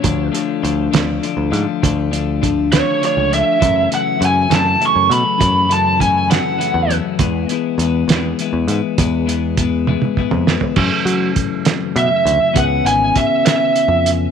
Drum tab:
CC |------------|------------|------------|------------|
HH |x-x-x-x-x-x-|x-x-x-x-x-x-|x-x-x-x-x-x-|x-x-x-x-x-x-|
SD |------o-----|------o-----|------o-----|------o-----|
T1 |------------|------------|------------|------------|
T2 |------------|------------|------------|------------|
FT |------------|------------|------------|------------|
BD |o-----------|o---o-------|o-----------|o---o-------|

CC |------------|------------|x-----------|------------|
HH |x-x-x-x-x-x-|x-x-x-------|--x-x-x-x-x-|x-x-x-x-x-x-|
SD |------o-----|----------o-|------o-----|------o-----|
T1 |------------|------oo----|------------|------------|
T2 |------------|---------o--|------------|------------|
FT |------------|-----------o|------------|------------|
BD |o-----------|o---o---o---|o---o-------|o---o-------|